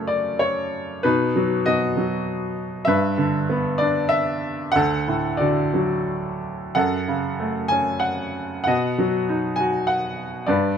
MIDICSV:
0, 0, Header, 1, 2, 480
1, 0, Start_track
1, 0, Tempo, 641026
1, 780, Time_signature, 3, 2, 24, 8
1, 780, Tempo, 616650
1, 3660, Tempo, 669643
1, 5100, Tempo, 639659
1, 6540, Tempo, 604839
1, 8212, End_track
2, 0, Start_track
2, 0, Title_t, "Grand piano"
2, 0, Program_c, 0, 0
2, 0, Control_c, 0, 64, 127
2, 0, Note_on_c, 0, 42, 39
2, 0, Note_on_c, 0, 49, 34
2, 0, Note_on_c, 0, 57, 32
2, 0, Note_on_c, 0, 69, 39
2, 0, Note_on_c, 0, 73, 56
2, 56, Note_on_c, 0, 74, 52
2, 76, Note_off_c, 0, 73, 0
2, 295, Note_on_c, 0, 73, 57
2, 308, Note_off_c, 0, 74, 0
2, 512, Note_off_c, 0, 49, 0
2, 746, Note_off_c, 0, 73, 0
2, 749, Note_off_c, 0, 42, 0
2, 749, Note_off_c, 0, 57, 0
2, 773, Note_on_c, 0, 71, 61
2, 781, Note_on_c, 0, 63, 41
2, 783, Note_on_c, 0, 47, 45
2, 789, Control_c, 0, 64, 0
2, 797, Note_off_c, 0, 69, 0
2, 950, Control_c, 0, 64, 127
2, 1026, Note_on_c, 0, 54, 38
2, 1255, Note_off_c, 0, 47, 0
2, 1258, Note_on_c, 0, 75, 64
2, 1260, Note_on_c, 0, 66, 45
2, 1267, Note_on_c, 0, 47, 39
2, 1270, Note_off_c, 0, 71, 0
2, 1463, Note_off_c, 0, 63, 0
2, 1489, Note_off_c, 0, 54, 0
2, 1501, Note_on_c, 0, 54, 39
2, 1937, Note_off_c, 0, 75, 0
2, 1938, Note_off_c, 0, 66, 0
2, 2182, Note_off_c, 0, 47, 0
2, 2186, Note_on_c, 0, 76, 67
2, 2189, Note_off_c, 0, 54, 0
2, 2206, Note_on_c, 0, 43, 51
2, 2209, Note_on_c, 0, 71, 47
2, 2216, Control_c, 0, 64, 0
2, 2377, Control_c, 0, 64, 127
2, 2443, Note_on_c, 0, 50, 41
2, 2689, Note_on_c, 0, 59, 42
2, 2908, Note_off_c, 0, 71, 0
2, 2912, Note_on_c, 0, 74, 63
2, 2937, Note_on_c, 0, 62, 43
2, 2949, Note_off_c, 0, 76, 0
2, 3151, Note_on_c, 0, 76, 70
2, 3172, Note_off_c, 0, 74, 0
2, 3386, Note_off_c, 0, 50, 0
2, 3630, Note_off_c, 0, 43, 0
2, 3630, Note_off_c, 0, 59, 0
2, 3639, Note_off_c, 0, 62, 0
2, 3640, Note_on_c, 0, 78, 78
2, 3663, Note_off_c, 0, 76, 0
2, 3668, Note_on_c, 0, 38, 50
2, 3669, Control_c, 0, 64, 0
2, 3673, Note_on_c, 0, 69, 56
2, 3802, Control_c, 0, 64, 127
2, 3901, Note_on_c, 0, 45, 40
2, 4113, Note_on_c, 0, 74, 48
2, 4132, Note_off_c, 0, 78, 0
2, 4134, Note_on_c, 0, 66, 32
2, 4138, Note_on_c, 0, 50, 39
2, 4346, Note_off_c, 0, 69, 0
2, 4375, Note_on_c, 0, 54, 35
2, 4827, Note_off_c, 0, 74, 0
2, 4837, Note_off_c, 0, 66, 0
2, 4839, Note_off_c, 0, 45, 0
2, 5076, Note_off_c, 0, 38, 0
2, 5078, Note_off_c, 0, 50, 0
2, 5083, Note_off_c, 0, 54, 0
2, 5099, Note_on_c, 0, 78, 65
2, 5106, Note_on_c, 0, 42, 43
2, 5110, Control_c, 0, 64, 0
2, 5112, Note_on_c, 0, 69, 44
2, 5227, Control_c, 0, 64, 127
2, 5348, Note_on_c, 0, 49, 35
2, 5587, Note_on_c, 0, 57, 38
2, 5797, Note_off_c, 0, 69, 0
2, 5800, Note_on_c, 0, 80, 67
2, 5826, Note_on_c, 0, 61, 38
2, 5842, Note_off_c, 0, 78, 0
2, 6035, Note_on_c, 0, 78, 64
2, 6055, Note_off_c, 0, 80, 0
2, 6270, Note_off_c, 0, 49, 0
2, 6504, Note_off_c, 0, 78, 0
2, 6513, Note_off_c, 0, 42, 0
2, 6513, Note_off_c, 0, 57, 0
2, 6515, Note_on_c, 0, 78, 64
2, 6521, Note_off_c, 0, 61, 0
2, 6540, Note_on_c, 0, 47, 48
2, 6544, Note_on_c, 0, 75, 52
2, 6552, Control_c, 0, 64, 0
2, 6713, Control_c, 0, 64, 127
2, 6790, Note_on_c, 0, 54, 38
2, 7032, Note_on_c, 0, 63, 38
2, 7241, Note_off_c, 0, 75, 0
2, 7245, Note_on_c, 0, 80, 61
2, 7280, Note_off_c, 0, 78, 0
2, 7282, Note_on_c, 0, 66, 39
2, 7492, Note_on_c, 0, 78, 65
2, 7500, Note_off_c, 0, 80, 0
2, 7711, Note_off_c, 0, 54, 0
2, 7947, Note_off_c, 0, 47, 0
2, 7949, Note_off_c, 0, 63, 0
2, 7963, Note_off_c, 0, 66, 0
2, 7965, Note_on_c, 0, 74, 53
2, 7976, Note_on_c, 0, 43, 50
2, 7987, Note_off_c, 0, 78, 0
2, 7987, Note_on_c, 0, 71, 41
2, 7989, Control_c, 0, 64, 0
2, 8132, Control_c, 0, 64, 127
2, 8212, Note_off_c, 0, 43, 0
2, 8212, Note_off_c, 0, 71, 0
2, 8212, Note_off_c, 0, 74, 0
2, 8212, End_track
0, 0, End_of_file